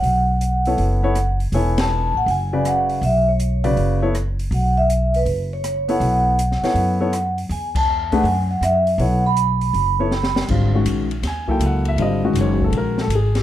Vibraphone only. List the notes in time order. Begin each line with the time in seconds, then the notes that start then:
Already playing: F#5
1.54 G#5
1.79 A5
2.17 F#5
2.30 G#5
2.67 F#5
3.05 E5
3.29 C#5
4.54 F#5
4.78 E5
5.16 B4
5.53 C#5
5.91 F#5
7.52 G#5
7.77 A5
8.14 F#5
8.26 G#5
8.51 F#5
8.64 E5
9.01 F#5
9.26 B5